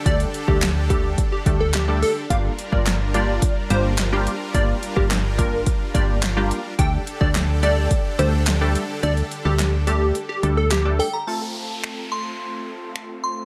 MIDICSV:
0, 0, Header, 1, 8, 480
1, 0, Start_track
1, 0, Key_signature, -2, "minor"
1, 0, Tempo, 560748
1, 51, Time_signature, 4, 2, 24, 8
1, 11513, End_track
2, 0, Start_track
2, 0, Title_t, "Synth bell"
2, 0, Program_c, 0, 98
2, 9413, Note_on_c, 0, 79, 84
2, 9531, Note_on_c, 0, 82, 84
2, 9535, Note_off_c, 0, 79, 0
2, 9651, Note_on_c, 0, 81, 82
2, 9654, Note_off_c, 0, 82, 0
2, 10336, Note_off_c, 0, 81, 0
2, 10372, Note_on_c, 0, 84, 94
2, 11320, Note_off_c, 0, 84, 0
2, 11330, Note_on_c, 0, 84, 90
2, 11513, Note_off_c, 0, 84, 0
2, 11513, End_track
3, 0, Start_track
3, 0, Title_t, "Digital synth lead"
3, 0, Program_c, 1, 84
3, 51, Note_on_c, 1, 74, 102
3, 133, Note_off_c, 1, 74, 0
3, 410, Note_on_c, 1, 67, 82
3, 492, Note_off_c, 1, 67, 0
3, 770, Note_on_c, 1, 67, 90
3, 934, Note_off_c, 1, 67, 0
3, 1132, Note_on_c, 1, 67, 75
3, 1214, Note_off_c, 1, 67, 0
3, 1374, Note_on_c, 1, 69, 91
3, 1455, Note_off_c, 1, 69, 0
3, 1492, Note_on_c, 1, 67, 92
3, 1573, Note_off_c, 1, 67, 0
3, 1733, Note_on_c, 1, 69, 88
3, 1814, Note_off_c, 1, 69, 0
3, 1972, Note_on_c, 1, 77, 111
3, 2053, Note_off_c, 1, 77, 0
3, 2332, Note_on_c, 1, 74, 74
3, 2413, Note_off_c, 1, 74, 0
3, 2690, Note_on_c, 1, 74, 86
3, 3029, Note_off_c, 1, 74, 0
3, 3170, Note_on_c, 1, 72, 81
3, 3252, Note_off_c, 1, 72, 0
3, 3890, Note_on_c, 1, 74, 111
3, 3972, Note_off_c, 1, 74, 0
3, 4250, Note_on_c, 1, 67, 80
3, 4332, Note_off_c, 1, 67, 0
3, 4609, Note_on_c, 1, 70, 85
3, 4948, Note_off_c, 1, 70, 0
3, 5088, Note_on_c, 1, 74, 84
3, 5171, Note_off_c, 1, 74, 0
3, 5810, Note_on_c, 1, 79, 112
3, 5892, Note_off_c, 1, 79, 0
3, 6170, Note_on_c, 1, 74, 82
3, 6252, Note_off_c, 1, 74, 0
3, 6529, Note_on_c, 1, 74, 90
3, 6868, Note_off_c, 1, 74, 0
3, 7010, Note_on_c, 1, 72, 85
3, 7092, Note_off_c, 1, 72, 0
3, 7730, Note_on_c, 1, 74, 106
3, 7812, Note_off_c, 1, 74, 0
3, 8091, Note_on_c, 1, 67, 82
3, 8173, Note_off_c, 1, 67, 0
3, 8449, Note_on_c, 1, 67, 86
3, 8614, Note_off_c, 1, 67, 0
3, 8809, Note_on_c, 1, 67, 75
3, 8891, Note_off_c, 1, 67, 0
3, 9051, Note_on_c, 1, 69, 88
3, 9133, Note_off_c, 1, 69, 0
3, 9169, Note_on_c, 1, 67, 89
3, 9251, Note_off_c, 1, 67, 0
3, 9409, Note_on_c, 1, 69, 89
3, 9492, Note_off_c, 1, 69, 0
3, 11513, End_track
4, 0, Start_track
4, 0, Title_t, "Supersaw synth"
4, 0, Program_c, 2, 81
4, 0, Note_on_c, 2, 50, 85
4, 0, Note_on_c, 2, 62, 78
4, 0, Note_on_c, 2, 67, 75
4, 0, Note_on_c, 2, 69, 94
4, 1935, Note_off_c, 2, 50, 0
4, 1935, Note_off_c, 2, 69, 0
4, 1936, Note_off_c, 2, 67, 0
4, 1971, Note_on_c, 2, 55, 85
4, 1971, Note_on_c, 2, 65, 77
4, 1971, Note_on_c, 2, 70, 92
4, 5776, Note_off_c, 2, 55, 0
4, 5776, Note_off_c, 2, 62, 0
4, 5776, Note_off_c, 2, 65, 0
4, 5776, Note_off_c, 2, 70, 0
4, 5811, Note_on_c, 2, 67, 78
4, 5811, Note_on_c, 2, 69, 90
4, 5812, Note_on_c, 2, 50, 83
4, 5812, Note_on_c, 2, 62, 80
4, 9616, Note_off_c, 2, 69, 0
4, 9617, Note_off_c, 2, 50, 0
4, 9617, Note_off_c, 2, 62, 0
4, 9617, Note_off_c, 2, 67, 0
4, 11513, End_track
5, 0, Start_track
5, 0, Title_t, "Analog polysynth"
5, 0, Program_c, 3, 90
5, 47, Note_on_c, 3, 55, 82
5, 49, Note_on_c, 3, 57, 70
5, 50, Note_on_c, 3, 62, 74
5, 51, Note_on_c, 3, 67, 73
5, 52, Note_on_c, 3, 69, 87
5, 242, Note_off_c, 3, 55, 0
5, 243, Note_off_c, 3, 57, 0
5, 243, Note_off_c, 3, 62, 0
5, 244, Note_off_c, 3, 67, 0
5, 245, Note_off_c, 3, 69, 0
5, 408, Note_on_c, 3, 55, 77
5, 409, Note_on_c, 3, 57, 70
5, 411, Note_on_c, 3, 62, 69
5, 412, Note_on_c, 3, 67, 70
5, 413, Note_on_c, 3, 69, 85
5, 603, Note_off_c, 3, 55, 0
5, 603, Note_off_c, 3, 57, 0
5, 604, Note_off_c, 3, 62, 0
5, 604, Note_off_c, 3, 67, 0
5, 605, Note_off_c, 3, 69, 0
5, 770, Note_on_c, 3, 55, 79
5, 770, Note_on_c, 3, 57, 76
5, 772, Note_on_c, 3, 62, 72
5, 773, Note_on_c, 3, 67, 72
5, 773, Note_on_c, 3, 69, 88
5, 1028, Note_off_c, 3, 55, 0
5, 1028, Note_off_c, 3, 57, 0
5, 1029, Note_off_c, 3, 62, 0
5, 1030, Note_off_c, 3, 67, 0
5, 1030, Note_off_c, 3, 69, 0
5, 1249, Note_on_c, 3, 55, 80
5, 1250, Note_on_c, 3, 57, 73
5, 1251, Note_on_c, 3, 62, 76
5, 1252, Note_on_c, 3, 67, 74
5, 1254, Note_on_c, 3, 69, 87
5, 1443, Note_off_c, 3, 55, 0
5, 1444, Note_off_c, 3, 57, 0
5, 1444, Note_off_c, 3, 62, 0
5, 1445, Note_off_c, 3, 67, 0
5, 1445, Note_off_c, 3, 69, 0
5, 1609, Note_on_c, 3, 55, 78
5, 1609, Note_on_c, 3, 57, 68
5, 1611, Note_on_c, 3, 62, 72
5, 1612, Note_on_c, 3, 67, 71
5, 1613, Note_on_c, 3, 69, 87
5, 1803, Note_off_c, 3, 55, 0
5, 1803, Note_off_c, 3, 57, 0
5, 1804, Note_off_c, 3, 62, 0
5, 1804, Note_off_c, 3, 67, 0
5, 1805, Note_off_c, 3, 69, 0
5, 1969, Note_on_c, 3, 55, 79
5, 1970, Note_on_c, 3, 58, 76
5, 1972, Note_on_c, 3, 62, 75
5, 1973, Note_on_c, 3, 65, 75
5, 1974, Note_on_c, 3, 67, 85
5, 2163, Note_off_c, 3, 55, 0
5, 2164, Note_off_c, 3, 58, 0
5, 2165, Note_off_c, 3, 62, 0
5, 2165, Note_off_c, 3, 65, 0
5, 2166, Note_off_c, 3, 67, 0
5, 2328, Note_on_c, 3, 55, 75
5, 2330, Note_on_c, 3, 58, 74
5, 2330, Note_on_c, 3, 62, 69
5, 2332, Note_on_c, 3, 65, 75
5, 2333, Note_on_c, 3, 70, 86
5, 2523, Note_off_c, 3, 55, 0
5, 2524, Note_off_c, 3, 58, 0
5, 2524, Note_off_c, 3, 62, 0
5, 2525, Note_off_c, 3, 65, 0
5, 2525, Note_off_c, 3, 70, 0
5, 2690, Note_on_c, 3, 55, 81
5, 2691, Note_on_c, 3, 58, 73
5, 2692, Note_on_c, 3, 62, 76
5, 2694, Note_on_c, 3, 65, 75
5, 2695, Note_on_c, 3, 67, 88
5, 2948, Note_off_c, 3, 55, 0
5, 2948, Note_off_c, 3, 58, 0
5, 2949, Note_off_c, 3, 62, 0
5, 2950, Note_off_c, 3, 65, 0
5, 2950, Note_off_c, 3, 67, 0
5, 3169, Note_on_c, 3, 55, 80
5, 3170, Note_on_c, 3, 58, 72
5, 3172, Note_on_c, 3, 62, 76
5, 3173, Note_on_c, 3, 65, 72
5, 3173, Note_on_c, 3, 67, 89
5, 3363, Note_off_c, 3, 55, 0
5, 3364, Note_off_c, 3, 58, 0
5, 3365, Note_off_c, 3, 62, 0
5, 3365, Note_off_c, 3, 65, 0
5, 3365, Note_off_c, 3, 67, 0
5, 3529, Note_on_c, 3, 55, 93
5, 3530, Note_on_c, 3, 58, 83
5, 3531, Note_on_c, 3, 62, 83
5, 3532, Note_on_c, 3, 65, 88
5, 3534, Note_on_c, 3, 67, 106
5, 3723, Note_off_c, 3, 55, 0
5, 3724, Note_off_c, 3, 58, 0
5, 3724, Note_off_c, 3, 62, 0
5, 3725, Note_off_c, 3, 65, 0
5, 3726, Note_off_c, 3, 67, 0
5, 3889, Note_on_c, 3, 55, 79
5, 3889, Note_on_c, 3, 58, 73
5, 3891, Note_on_c, 3, 62, 72
5, 3892, Note_on_c, 3, 65, 77
5, 3892, Note_on_c, 3, 67, 84
5, 4083, Note_off_c, 3, 55, 0
5, 4083, Note_off_c, 3, 58, 0
5, 4084, Note_off_c, 3, 62, 0
5, 4084, Note_off_c, 3, 65, 0
5, 4085, Note_off_c, 3, 67, 0
5, 4247, Note_on_c, 3, 55, 74
5, 4248, Note_on_c, 3, 58, 73
5, 4249, Note_on_c, 3, 62, 69
5, 4250, Note_on_c, 3, 65, 72
5, 4251, Note_on_c, 3, 70, 87
5, 4442, Note_off_c, 3, 55, 0
5, 4443, Note_off_c, 3, 58, 0
5, 4443, Note_off_c, 3, 62, 0
5, 4444, Note_off_c, 3, 65, 0
5, 4444, Note_off_c, 3, 70, 0
5, 4608, Note_on_c, 3, 55, 81
5, 4609, Note_on_c, 3, 58, 72
5, 4611, Note_on_c, 3, 62, 75
5, 4612, Note_on_c, 3, 65, 72
5, 4613, Note_on_c, 3, 70, 87
5, 4867, Note_off_c, 3, 55, 0
5, 4868, Note_off_c, 3, 58, 0
5, 4869, Note_off_c, 3, 62, 0
5, 4869, Note_off_c, 3, 65, 0
5, 4869, Note_off_c, 3, 70, 0
5, 5089, Note_on_c, 3, 55, 82
5, 5090, Note_on_c, 3, 58, 74
5, 5091, Note_on_c, 3, 62, 73
5, 5093, Note_on_c, 3, 65, 75
5, 5094, Note_on_c, 3, 67, 88
5, 5283, Note_off_c, 3, 55, 0
5, 5284, Note_off_c, 3, 58, 0
5, 5284, Note_off_c, 3, 62, 0
5, 5285, Note_off_c, 3, 65, 0
5, 5285, Note_off_c, 3, 67, 0
5, 5449, Note_on_c, 3, 55, 91
5, 5450, Note_on_c, 3, 58, 85
5, 5451, Note_on_c, 3, 62, 83
5, 5451, Note_on_c, 3, 65, 89
5, 5453, Note_on_c, 3, 67, 104
5, 5643, Note_off_c, 3, 55, 0
5, 5644, Note_off_c, 3, 58, 0
5, 5644, Note_off_c, 3, 62, 0
5, 5644, Note_off_c, 3, 65, 0
5, 5645, Note_off_c, 3, 67, 0
5, 5809, Note_on_c, 3, 55, 79
5, 5810, Note_on_c, 3, 57, 74
5, 5811, Note_on_c, 3, 62, 75
5, 5811, Note_on_c, 3, 67, 73
5, 5813, Note_on_c, 3, 69, 86
5, 6003, Note_off_c, 3, 55, 0
5, 6004, Note_off_c, 3, 57, 0
5, 6004, Note_off_c, 3, 62, 0
5, 6004, Note_off_c, 3, 67, 0
5, 6005, Note_off_c, 3, 69, 0
5, 6169, Note_on_c, 3, 55, 76
5, 6170, Note_on_c, 3, 57, 73
5, 6172, Note_on_c, 3, 62, 72
5, 6172, Note_on_c, 3, 67, 70
5, 6174, Note_on_c, 3, 69, 88
5, 6363, Note_off_c, 3, 55, 0
5, 6364, Note_off_c, 3, 57, 0
5, 6365, Note_off_c, 3, 62, 0
5, 6365, Note_off_c, 3, 67, 0
5, 6366, Note_off_c, 3, 69, 0
5, 6528, Note_on_c, 3, 55, 79
5, 6529, Note_on_c, 3, 57, 76
5, 6530, Note_on_c, 3, 62, 73
5, 6531, Note_on_c, 3, 67, 77
5, 6532, Note_on_c, 3, 69, 92
5, 6787, Note_off_c, 3, 55, 0
5, 6788, Note_off_c, 3, 57, 0
5, 6788, Note_off_c, 3, 62, 0
5, 6789, Note_off_c, 3, 67, 0
5, 6789, Note_off_c, 3, 69, 0
5, 7007, Note_on_c, 3, 55, 81
5, 7009, Note_on_c, 3, 57, 75
5, 7009, Note_on_c, 3, 62, 76
5, 7010, Note_on_c, 3, 67, 74
5, 7012, Note_on_c, 3, 69, 86
5, 7202, Note_off_c, 3, 55, 0
5, 7203, Note_off_c, 3, 57, 0
5, 7203, Note_off_c, 3, 62, 0
5, 7203, Note_off_c, 3, 67, 0
5, 7204, Note_off_c, 3, 69, 0
5, 7369, Note_on_c, 3, 55, 96
5, 7370, Note_on_c, 3, 57, 83
5, 7371, Note_on_c, 3, 62, 85
5, 7372, Note_on_c, 3, 67, 90
5, 7374, Note_on_c, 3, 69, 102
5, 7563, Note_off_c, 3, 55, 0
5, 7564, Note_off_c, 3, 57, 0
5, 7564, Note_off_c, 3, 62, 0
5, 7565, Note_off_c, 3, 67, 0
5, 7565, Note_off_c, 3, 69, 0
5, 7730, Note_on_c, 3, 55, 82
5, 7730, Note_on_c, 3, 57, 76
5, 7731, Note_on_c, 3, 62, 71
5, 7732, Note_on_c, 3, 67, 73
5, 7733, Note_on_c, 3, 69, 90
5, 7923, Note_off_c, 3, 55, 0
5, 7924, Note_off_c, 3, 57, 0
5, 7924, Note_off_c, 3, 62, 0
5, 7925, Note_off_c, 3, 67, 0
5, 7925, Note_off_c, 3, 69, 0
5, 8088, Note_on_c, 3, 55, 80
5, 8088, Note_on_c, 3, 57, 72
5, 8089, Note_on_c, 3, 62, 71
5, 8091, Note_on_c, 3, 67, 70
5, 8092, Note_on_c, 3, 69, 87
5, 8283, Note_off_c, 3, 55, 0
5, 8283, Note_off_c, 3, 57, 0
5, 8283, Note_off_c, 3, 62, 0
5, 8284, Note_off_c, 3, 67, 0
5, 8285, Note_off_c, 3, 69, 0
5, 8449, Note_on_c, 3, 55, 78
5, 8449, Note_on_c, 3, 57, 75
5, 8451, Note_on_c, 3, 62, 75
5, 8452, Note_on_c, 3, 67, 73
5, 8453, Note_on_c, 3, 69, 87
5, 8708, Note_off_c, 3, 55, 0
5, 8708, Note_off_c, 3, 57, 0
5, 8708, Note_off_c, 3, 62, 0
5, 8709, Note_off_c, 3, 67, 0
5, 8710, Note_off_c, 3, 69, 0
5, 8928, Note_on_c, 3, 55, 82
5, 8929, Note_on_c, 3, 57, 71
5, 8931, Note_on_c, 3, 62, 75
5, 8931, Note_on_c, 3, 67, 72
5, 8933, Note_on_c, 3, 69, 89
5, 9122, Note_off_c, 3, 55, 0
5, 9123, Note_off_c, 3, 57, 0
5, 9124, Note_off_c, 3, 62, 0
5, 9124, Note_off_c, 3, 67, 0
5, 9125, Note_off_c, 3, 69, 0
5, 9287, Note_on_c, 3, 55, 76
5, 9288, Note_on_c, 3, 57, 70
5, 9288, Note_on_c, 3, 62, 71
5, 9289, Note_on_c, 3, 67, 71
5, 9291, Note_on_c, 3, 69, 89
5, 9482, Note_off_c, 3, 55, 0
5, 9483, Note_off_c, 3, 57, 0
5, 9483, Note_off_c, 3, 62, 0
5, 9483, Note_off_c, 3, 67, 0
5, 9484, Note_off_c, 3, 69, 0
5, 9647, Note_on_c, 3, 57, 67
5, 9650, Note_on_c, 3, 60, 60
5, 9652, Note_on_c, 3, 65, 59
5, 9655, Note_on_c, 3, 69, 70
5, 11513, Note_off_c, 3, 57, 0
5, 11513, Note_off_c, 3, 60, 0
5, 11513, Note_off_c, 3, 65, 0
5, 11513, Note_off_c, 3, 69, 0
5, 11513, End_track
6, 0, Start_track
6, 0, Title_t, "FM bass"
6, 0, Program_c, 4, 39
6, 51, Note_on_c, 4, 38, 101
6, 214, Note_off_c, 4, 38, 0
6, 412, Note_on_c, 4, 38, 91
6, 984, Note_off_c, 4, 38, 0
6, 1250, Note_on_c, 4, 38, 94
6, 1741, Note_off_c, 4, 38, 0
6, 1971, Note_on_c, 4, 31, 100
6, 2134, Note_off_c, 4, 31, 0
6, 2333, Note_on_c, 4, 31, 87
6, 2904, Note_off_c, 4, 31, 0
6, 3171, Note_on_c, 4, 31, 90
6, 3661, Note_off_c, 4, 31, 0
6, 3890, Note_on_c, 4, 31, 100
6, 4054, Note_off_c, 4, 31, 0
6, 4252, Note_on_c, 4, 31, 88
6, 4824, Note_off_c, 4, 31, 0
6, 5091, Note_on_c, 4, 31, 89
6, 5581, Note_off_c, 4, 31, 0
6, 5811, Note_on_c, 4, 38, 100
6, 5974, Note_off_c, 4, 38, 0
6, 6173, Note_on_c, 4, 38, 93
6, 6744, Note_off_c, 4, 38, 0
6, 7011, Note_on_c, 4, 38, 95
6, 7501, Note_off_c, 4, 38, 0
6, 7731, Note_on_c, 4, 38, 106
6, 7894, Note_off_c, 4, 38, 0
6, 8091, Note_on_c, 4, 38, 88
6, 8663, Note_off_c, 4, 38, 0
6, 8930, Note_on_c, 4, 38, 93
6, 9421, Note_off_c, 4, 38, 0
6, 11513, End_track
7, 0, Start_track
7, 0, Title_t, "Downlifter"
7, 0, Program_c, 5, 103
7, 9650, Note_on_c, 5, 60, 75
7, 11513, Note_off_c, 5, 60, 0
7, 11513, End_track
8, 0, Start_track
8, 0, Title_t, "Drums"
8, 50, Note_on_c, 9, 36, 111
8, 51, Note_on_c, 9, 42, 87
8, 136, Note_off_c, 9, 36, 0
8, 136, Note_off_c, 9, 42, 0
8, 172, Note_on_c, 9, 42, 60
8, 257, Note_off_c, 9, 42, 0
8, 293, Note_on_c, 9, 42, 65
8, 379, Note_off_c, 9, 42, 0
8, 413, Note_on_c, 9, 36, 93
8, 498, Note_off_c, 9, 36, 0
8, 532, Note_on_c, 9, 39, 116
8, 532, Note_on_c, 9, 42, 104
8, 533, Note_off_c, 9, 39, 0
8, 533, Note_on_c, 9, 39, 97
8, 538, Note_on_c, 9, 38, 96
8, 617, Note_off_c, 9, 42, 0
8, 619, Note_off_c, 9, 39, 0
8, 624, Note_off_c, 9, 38, 0
8, 771, Note_on_c, 9, 36, 102
8, 772, Note_on_c, 9, 42, 74
8, 857, Note_off_c, 9, 36, 0
8, 857, Note_off_c, 9, 42, 0
8, 1010, Note_on_c, 9, 36, 102
8, 1010, Note_on_c, 9, 42, 89
8, 1096, Note_off_c, 9, 36, 0
8, 1096, Note_off_c, 9, 42, 0
8, 1251, Note_on_c, 9, 36, 105
8, 1251, Note_on_c, 9, 42, 78
8, 1336, Note_off_c, 9, 36, 0
8, 1336, Note_off_c, 9, 42, 0
8, 1489, Note_on_c, 9, 39, 96
8, 1491, Note_off_c, 9, 39, 0
8, 1491, Note_on_c, 9, 39, 120
8, 1491, Note_on_c, 9, 42, 114
8, 1497, Note_on_c, 9, 38, 93
8, 1576, Note_off_c, 9, 42, 0
8, 1577, Note_off_c, 9, 39, 0
8, 1583, Note_off_c, 9, 38, 0
8, 1734, Note_on_c, 9, 46, 77
8, 1820, Note_off_c, 9, 46, 0
8, 1971, Note_on_c, 9, 36, 111
8, 1972, Note_on_c, 9, 42, 87
8, 2057, Note_off_c, 9, 36, 0
8, 2058, Note_off_c, 9, 42, 0
8, 2213, Note_on_c, 9, 42, 68
8, 2299, Note_off_c, 9, 42, 0
8, 2333, Note_on_c, 9, 36, 100
8, 2418, Note_off_c, 9, 36, 0
8, 2451, Note_on_c, 9, 42, 104
8, 2452, Note_on_c, 9, 39, 119
8, 2453, Note_off_c, 9, 39, 0
8, 2453, Note_on_c, 9, 39, 94
8, 2458, Note_on_c, 9, 38, 93
8, 2537, Note_off_c, 9, 42, 0
8, 2538, Note_off_c, 9, 39, 0
8, 2543, Note_off_c, 9, 38, 0
8, 2691, Note_on_c, 9, 42, 71
8, 2776, Note_off_c, 9, 42, 0
8, 2929, Note_on_c, 9, 36, 107
8, 2929, Note_on_c, 9, 42, 93
8, 3014, Note_off_c, 9, 42, 0
8, 3015, Note_off_c, 9, 36, 0
8, 3170, Note_on_c, 9, 42, 80
8, 3255, Note_off_c, 9, 42, 0
8, 3409, Note_on_c, 9, 39, 97
8, 3409, Note_on_c, 9, 42, 118
8, 3410, Note_off_c, 9, 39, 0
8, 3410, Note_on_c, 9, 39, 119
8, 3416, Note_on_c, 9, 38, 95
8, 3495, Note_off_c, 9, 42, 0
8, 3496, Note_off_c, 9, 39, 0
8, 3502, Note_off_c, 9, 38, 0
8, 3653, Note_on_c, 9, 42, 77
8, 3739, Note_off_c, 9, 42, 0
8, 3890, Note_on_c, 9, 36, 110
8, 3890, Note_on_c, 9, 42, 90
8, 3976, Note_off_c, 9, 36, 0
8, 3976, Note_off_c, 9, 42, 0
8, 4132, Note_on_c, 9, 42, 67
8, 4218, Note_off_c, 9, 42, 0
8, 4252, Note_on_c, 9, 36, 98
8, 4338, Note_off_c, 9, 36, 0
8, 4371, Note_on_c, 9, 42, 102
8, 4372, Note_on_c, 9, 39, 118
8, 4374, Note_off_c, 9, 39, 0
8, 4374, Note_on_c, 9, 39, 96
8, 4378, Note_on_c, 9, 38, 94
8, 4457, Note_off_c, 9, 42, 0
8, 4460, Note_off_c, 9, 39, 0
8, 4463, Note_off_c, 9, 38, 0
8, 4611, Note_on_c, 9, 36, 97
8, 4611, Note_on_c, 9, 42, 77
8, 4697, Note_off_c, 9, 36, 0
8, 4697, Note_off_c, 9, 42, 0
8, 4849, Note_on_c, 9, 42, 92
8, 4850, Note_on_c, 9, 36, 101
8, 4934, Note_off_c, 9, 42, 0
8, 4935, Note_off_c, 9, 36, 0
8, 5090, Note_on_c, 9, 42, 80
8, 5091, Note_on_c, 9, 36, 110
8, 5176, Note_off_c, 9, 36, 0
8, 5176, Note_off_c, 9, 42, 0
8, 5330, Note_on_c, 9, 42, 116
8, 5331, Note_on_c, 9, 39, 95
8, 5337, Note_on_c, 9, 38, 96
8, 5416, Note_off_c, 9, 42, 0
8, 5417, Note_off_c, 9, 39, 0
8, 5422, Note_off_c, 9, 38, 0
8, 5573, Note_on_c, 9, 42, 78
8, 5659, Note_off_c, 9, 42, 0
8, 5811, Note_on_c, 9, 36, 105
8, 5811, Note_on_c, 9, 42, 90
8, 5896, Note_off_c, 9, 36, 0
8, 5897, Note_off_c, 9, 42, 0
8, 6053, Note_on_c, 9, 42, 69
8, 6139, Note_off_c, 9, 42, 0
8, 6173, Note_on_c, 9, 36, 91
8, 6258, Note_off_c, 9, 36, 0
8, 6291, Note_on_c, 9, 42, 103
8, 6292, Note_on_c, 9, 39, 121
8, 6293, Note_off_c, 9, 39, 0
8, 6293, Note_on_c, 9, 39, 94
8, 6298, Note_on_c, 9, 38, 93
8, 6377, Note_off_c, 9, 42, 0
8, 6379, Note_off_c, 9, 39, 0
8, 6383, Note_off_c, 9, 38, 0
8, 6531, Note_on_c, 9, 42, 73
8, 6617, Note_off_c, 9, 42, 0
8, 6769, Note_on_c, 9, 42, 90
8, 6770, Note_on_c, 9, 36, 105
8, 6854, Note_off_c, 9, 42, 0
8, 6855, Note_off_c, 9, 36, 0
8, 7011, Note_on_c, 9, 42, 82
8, 7096, Note_off_c, 9, 42, 0
8, 7249, Note_on_c, 9, 39, 97
8, 7250, Note_on_c, 9, 42, 115
8, 7251, Note_off_c, 9, 39, 0
8, 7251, Note_on_c, 9, 39, 123
8, 7257, Note_on_c, 9, 38, 98
8, 7336, Note_off_c, 9, 39, 0
8, 7336, Note_off_c, 9, 42, 0
8, 7342, Note_off_c, 9, 38, 0
8, 7494, Note_on_c, 9, 42, 79
8, 7579, Note_off_c, 9, 42, 0
8, 7731, Note_on_c, 9, 42, 89
8, 7817, Note_off_c, 9, 42, 0
8, 7852, Note_on_c, 9, 42, 55
8, 7937, Note_off_c, 9, 42, 0
8, 7973, Note_on_c, 9, 42, 67
8, 8059, Note_off_c, 9, 42, 0
8, 8210, Note_on_c, 9, 42, 101
8, 8211, Note_on_c, 9, 39, 121
8, 8214, Note_off_c, 9, 39, 0
8, 8214, Note_on_c, 9, 39, 99
8, 8217, Note_on_c, 9, 38, 92
8, 8296, Note_off_c, 9, 42, 0
8, 8300, Note_off_c, 9, 39, 0
8, 8303, Note_off_c, 9, 38, 0
8, 8451, Note_on_c, 9, 42, 72
8, 8536, Note_off_c, 9, 42, 0
8, 8689, Note_on_c, 9, 42, 92
8, 8775, Note_off_c, 9, 42, 0
8, 8930, Note_on_c, 9, 42, 80
8, 9016, Note_off_c, 9, 42, 0
8, 9170, Note_on_c, 9, 39, 116
8, 9170, Note_on_c, 9, 42, 121
8, 9177, Note_on_c, 9, 38, 94
8, 9255, Note_off_c, 9, 42, 0
8, 9256, Note_off_c, 9, 39, 0
8, 9262, Note_off_c, 9, 38, 0
8, 9414, Note_on_c, 9, 46, 76
8, 9499, Note_off_c, 9, 46, 0
8, 10131, Note_on_c, 9, 26, 103
8, 10217, Note_off_c, 9, 26, 0
8, 11091, Note_on_c, 9, 26, 106
8, 11176, Note_off_c, 9, 26, 0
8, 11513, End_track
0, 0, End_of_file